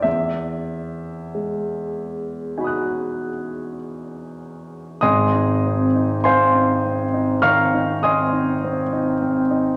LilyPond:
\new Staff \with { instrumentName = "Grand piano" } { \time 4/4 \key e \major \tempo 4 = 50 << { e''2. r4 | \key aes \major <ees'' aes'' c''' ees'''>4 <c'' f'' aes'' c'''>4 <f'' bes'' des''' f'''>8 <ees'' aes'' c''' ees'''>4. | } \\ { e,4 gis4 <dis' fis' gis'' b'' dis''' fis'''>2 | <aes,, aes,>16 ees'16 c'16 ees'16 c'16 ees'16 c'16 ees'16 ees16 ees'16 c'16 ees'16 c'16 ees'16 c'16 ees'16 | } >> }